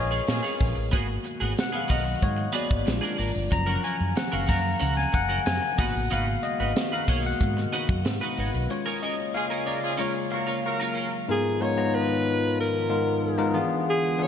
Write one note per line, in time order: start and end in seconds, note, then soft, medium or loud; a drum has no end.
0.00 0.19 A#1 medium
0.00 0.95 G#3 medium
0.00 0.94 C#4 soft
0.00 0.94 F4 medium
0.00 0.94 G#4 medium
0.00 0.95 A#4 medium
0.00 0.94 B4 medium
0.00 0.94 C#5 medium
0.00 0.95 D#5 medium
0.11 0.23 C#4 medium
0.11 0.23 F4 medium
0.11 0.23 G#4 medium
0.27 0.40 A#2 medium
0.27 0.74 C#4 medium
0.27 0.74 F4 medium
0.27 0.74 G#4 loud
0.27 muted clean electric guitar stroke soft
0.27 snare loud
0.27 closed hi-hat medium
0.43 0.59 C#4 medium
0.43 0.59 F4 medium
0.43 0.58 G#4 medium
0.60 0.72 A#1 medium
0.60 muted clean electric guitar stroke soft
0.60 kick medium
0.60 open hi-hat medium
0.75 0.93 A1 medium
0.75 muted clean electric guitar stroke soft
0.91 1.17 G#1 medium
0.91 2.85 B2 medium
0.91 2.85 D#3 medium
0.91 2.85 F#3 medium
0.91 3.49 G#3 medium
0.91 1.86 A#3 medium
0.91 1.07 B3 medium
0.91 1.86 B3 medium
0.91 2.85 F#4 medium
0.91 1.07 F#4 medium
0.91 1.86 F#4 medium
0.91 1.07 G#4 loud
0.91 kick loud
0.91 closed hi-hat medium
1.08 muted clean electric guitar stroke soft
1.24 muted clean electric guitar stroke soft
1.24 closed hi-hat medium
1.40 1.53 G#1 loud
1.40 1.53 B3 medium
1.40 1.53 F#4 medium
1.40 1.52 G#4 medium
1.57 1.75 F#5 loud
1.57 muted clean electric guitar stroke soft
1.57 snare loud
1.57 closed hi-hat medium
1.72 1.85 B3 soft
1.72 1.85 F#4 medium
1.72 1.84 G#4 medium
1.72 1.91 F5 medium
1.88 2.14 B1 medium
1.88 2.04 B3 medium
1.88 2.04 F#4 medium
1.88 2.04 A#4 loud
1.88 2.24 D#5 medium
1.88 kick medium
1.88 open hi-hat medium
2.04 muted clean electric guitar stroke medium
2.22 2.46 G#2 medium
2.22 2.56 C#5 medium
2.22 kick medium
2.22 closed hi-hat medium
2.37 muted clean electric guitar stroke soft
2.53 2.83 A#3 soft
2.53 2.68 B3 medium
2.53 2.84 B3 soft
2.53 2.69 F#4 medium
2.53 2.84 F#4 medium
2.53 2.68 G#4 loud
2.53 3.15 D5 medium
2.53 closed hi-hat medium
2.69 2.82 G#1 medium
2.69 muted clean electric guitar stroke soft
2.69 kick loud
2.86 2.98 A#1 medium
2.86 3.51 D3 medium
2.86 3.51 F3 medium
2.86 3.30 G#3 medium
2.86 5.75 A#3 medium
2.86 3.30 D4 soft
2.86 3.51 F4 medium
2.86 3.30 F4 medium
2.86 muted clean electric guitar stroke soft
2.86 snare loud
2.86 closed hi-hat medium
3.01 3.17 A#3 medium
3.01 3.17 D4 medium
3.01 3.17 G#4 medium
3.18 3.31 G#1 medium
3.18 3.30 A#3 medium
3.18 3.30 D4 medium
3.18 3.31 A#4 medium
3.18 open hi-hat medium
3.34 3.47 G1 medium
3.34 muted clean electric guitar stroke soft
3.51 3.75 F#1 loud
3.51 8.67 C#3 medium
3.51 5.77 D#3 medium
3.51 5.75 F3 medium
3.51 5.74 F#3 medium
3.51 5.77 C#4 medium
3.51 5.75 C#4 soft
3.51 5.77 F#5 medium
3.51 3.85 A#5 loud
3.51 muted clean electric guitar stroke soft
3.51 kick loud
3.51 closed hi-hat medium
3.66 3.82 C#4 medium
3.66 3.82 F#4 medium
3.66 3.82 A#4 medium
3.83 3.95 C#4 medium
3.83 3.95 F#4 medium
3.83 3.96 A#4 medium
3.83 4.14 G#5 medium
3.83 closed hi-hat medium
3.99 4.12 F#2 medium
3.99 muted clean electric guitar stroke medium
4.16 4.33 F#5 loud
4.16 muted clean electric guitar stroke soft
4.16 snare loud
4.16 closed hi-hat medium
4.32 4.44 F#1 medium
4.32 4.46 C#4 medium
4.32 4.46 F#4 medium
4.32 4.47 A#4 medium
4.32 4.50 F5 medium
4.47 4.73 F#2 medium
4.47 4.59 C#4 medium
4.47 4.60 F#4 medium
4.47 4.60 A#4 medium
4.47 4.94 A#5 loud
4.47 kick medium
4.47 open hi-hat medium
4.64 muted clean electric guitar stroke medium
4.80 5.05 C#2 loud
4.80 4.95 C#4 medium
4.80 4.96 F#4 medium
4.80 4.95 A#4 medium
4.80 closed hi-hat medium
4.96 5.14 G#5 medium
4.96 muted clean electric guitar stroke soft
4.96 snare soft
5.13 5.37 F#1 medium
5.13 5.48 F#5 loud
5.13 muted clean electric guitar stroke soft
5.13 kick medium
5.13 closed hi-hat medium
5.29 5.42 C#4 soft
5.29 5.41 F#4 medium
5.29 5.41 A#4 medium
5.46 5.58 F#2 medium
5.46 5.80 G#5 loud
5.46 snare loud
5.46 closed hi-hat medium
5.62 muted clean electric guitar stroke soft
5.78 5.91 G#1 medium
5.78 8.67 B2 medium
5.78 8.68 D#3 medium
5.78 9.96 G#3 medium
5.78 6.21 A#3 soft
5.78 6.22 B3 soft
5.78 5.93 D#4 medium
5.78 8.67 F#4 medium
5.78 6.22 F#4 medium
5.78 5.94 F#4 medium
5.78 5.94 B4 medium
5.78 6.12 F#5 medium
5.78 kick loud
5.78 open hi-hat medium
5.95 6.07 A1 medium
5.95 muted clean electric guitar stroke soft
6.11 6.35 G#1 loud
6.11 6.25 D#4 medium
6.11 6.26 F#4 medium
6.11 6.26 B4 loud
6.11 6.45 F5 medium
6.11 closed hi-hat medium
6.28 muted clean electric guitar stroke soft
6.43 6.88 D#5 medium
6.43 muted clean electric guitar stroke soft
6.43 closed hi-hat medium
6.60 6.72 G#1 loud
6.60 6.72 D#4 medium
6.60 6.72 F#4 medium
6.60 6.71 B4 medium
6.76 muted clean electric guitar stroke soft
6.76 snare loud
6.76 closed hi-hat medium
6.92 7.04 D#4 medium
6.92 7.04 F#4 medium
6.92 7.04 B4 medium
6.92 7.23 F5 medium
7.08 7.32 B1 medium
7.08 7.37 A#3 soft
7.08 7.37 B3 soft
7.08 7.23 D#4 loud
7.08 7.38 F#4 medium
7.08 7.23 F#4 medium
7.08 7.24 C#5 loud
7.08 kick medium
7.08 open hi-hat medium
7.24 8.42 F#5 loud
7.24 muted clean electric guitar stroke soft
7.41 7.64 G#2 medium
7.41 kick medium
7.41 closed hi-hat medium
7.57 muted clean electric guitar stroke medium
7.57 snare soft
7.73 7.88 D#4 medium
7.73 7.88 F#4 medium
7.73 7.88 B4 medium
7.73 snare soft
7.73 closed hi-hat medium
7.89 8.06 F#2 loud
7.89 muted clean electric guitar stroke soft
7.89 kick loud
8.05 8.17 G#2 medium
8.05 muted clean electric guitar stroke soft
8.05 snare loud
8.05 closed hi-hat medium
8.21 8.37 D#4 medium
8.21 8.37 F#4 medium
8.21 8.36 B4 medium
8.37 8.50 G#1 loud
8.37 8.49 D#4 medium
8.37 8.50 F#4 medium
8.37 8.53 B4 medium
8.37 8.50 C#5 medium
8.37 open hi-hat medium
8.54 8.66 B1 medium
8.54 muted clean electric guitar stroke medium
8.69 11.26 C#3 medium
8.69 9.63 G#3 medium
8.69 11.26 A#3 medium
8.69 9.63 C#4 soft
8.69 9.63 F4 medium
8.69 9.01 C#5 medium
8.69 11.27 F5 medium
8.69 muted clean electric guitar stroke soft
8.86 9.02 C#4 medium
8.86 9.01 G#4 medium
8.86 9.01 A#4 medium
9.03 9.14 C#4 medium
9.03 9.14 G#4 medium
9.03 9.15 A#4 medium
9.03 9.36 D#5 medium
9.19 muted clean electric guitar stroke soft
9.34 9.45 C#4 loud
9.34 9.45 F4 loud
9.34 9.45 G#4 loud
9.34 9.68 F5 medium
9.34 muted clean electric guitar stroke soft
9.50 9.65 C#4 medium
9.50 9.65 G#4 medium
9.50 9.65 A#4 medium
9.66 9.78 C#4 medium
9.66 9.78 G#4 medium
9.66 9.79 A#4 medium
9.66 10.00 D5 medium
9.82 9.94 C#4 loud
9.82 9.94 F4 medium
9.82 9.94 G#4 loud
9.82 muted clean electric guitar stroke soft
9.98 11.27 F#3 medium
9.98 11.25 G#3 medium
9.98 11.25 A#3 medium
9.98 10.13 C#4 medium
9.98 10.14 F4 medium
9.98 11.25 F4 medium
9.98 10.13 A#4 loud
9.98 10.33 C#5 medium
10.14 muted clean electric guitar stroke medium
10.31 10.47 A#3 medium
10.31 10.46 F#4 medium
10.31 10.47 A#4 medium
10.31 11.25 F5 medium
10.31 muted clean electric guitar stroke soft
10.47 10.60 C#4 medium
10.47 10.59 F4 medium
10.47 10.59 A#4 medium
10.63 11.10 A#3 medium
10.63 11.11 F#4 loud
10.63 11.11 A#4 loud
10.63 muted clean electric guitar stroke soft
10.80 10.93 C#4 medium
10.80 10.94 F4 medium
10.80 10.95 A#4 medium
10.95 11.07 C#4 medium
10.95 11.07 F4 medium
10.95 11.08 A#4 medium
11.11 muted clean electric guitar stroke medium
11.28 11.54 G#2 medium
11.28 13.53 D#3 medium
11.28 13.52 F3 medium
11.28 14.28 G#3 medium
11.28 11.54 B3 medium
11.28 14.28 B3 medium
11.28 11.54 D#4 medium
11.28 13.53 F4 medium
11.28 11.55 F4 medium
11.28 11.63 G#4 loud
11.28 11.55 A#4 medium
11.61 11.74 G#2 medium
11.61 11.74 B3 medium
11.61 11.74 D#4 medium
11.61 11.74 F4 medium
11.61 11.96 C#5 loud
11.61 11.74 C#5 medium
11.76 12.66 G#2 medium
11.76 12.67 B3 medium
11.76 12.67 D#4 medium
11.76 12.67 F4 medium
11.76 12.67 A#5 medium
11.95 12.59 B4 loud
12.60 13.52 A#4 medium
12.89 13.28 G#2 medium
12.89 13.28 B3 medium
12.89 13.28 D#4 medium
12.89 13.29 F4 medium
12.89 13.29 A#4 medium
13.38 13.54 G#2 medium
13.38 13.53 B3 medium
13.38 13.55 D#4 medium
13.38 13.53 F4 medium
13.38 13.55 A#4 loud
13.54 14.28 D3 medium
13.54 14.06 E3 medium
13.54 14.28 E3 medium
13.54 14.06 B3 medium
13.54 14.06 D4 medium
13.54 14.06 F4 medium
13.54 14.28 F4 medium
13.54 14.06 G#4 loud
13.90 14.25 G#4 loud
14.18 14.28 E3 medium
14.18 14.28 B3 medium
14.18 14.28 D4 medium
14.18 14.28 F4 medium
14.18 14.28 G#4 medium
14.23 14.28 C#5 loud